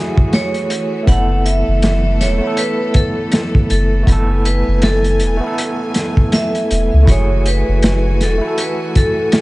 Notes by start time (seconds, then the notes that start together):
Already playing: E3 A3 E4 F#4 G#4
0.18 kick
0.33 C#5, snare, closed hi-hat
0.54 closed hi-hat
0.70 closed hi-hat
1.03 A3 B3
1.07 F#1 B3 E4 A4 F#5, kick, closed hi-hat
1.12 A4
1.46 E5, closed hi-hat
1.68 F#1
1.82 snare, closed hi-hat
2.21 E1 C#5, snare, closed hi-hat
2.38 A3 B3
2.44 E4 A4
2.57 B4, closed hi-hat
2.94 A4, kick, closed hi-hat
3.32 snare, closed hi-hat
3.55 kick
3.70 F#1 A4, closed hi-hat
4.03 A3 B3
4.07 F#1 E4 G#5, kick, closed hi-hat
4.12 A4
4.45 B4, closed hi-hat
4.68 F#1
4.82 A4, snare, closed hi-hat
5.04 closed hi-hat
5.20 E1, closed hi-hat
5.37 A3 B3
5.44 E4 A4
5.58 closed hi-hat
5.94 snare, closed hi-hat
6.17 kick
6.32 E5, snare, closed hi-hat
6.55 closed hi-hat
6.71 E1, closed hi-hat
6.93 C#2
7.03 A3 E4
7.07 F#1 E3 F#4 C#5 G#5, kick, closed hi-hat
7.12 G#4
7.46 B4, closed hi-hat
7.68 F#1
7.83 snare, closed hi-hat
8.21 E1 A4, snare, closed hi-hat
8.38 A3 E4
8.44 F#4 A4
8.58 B4, closed hi-hat
8.95 A4, kick, closed hi-hat
9.32 snare, closed hi-hat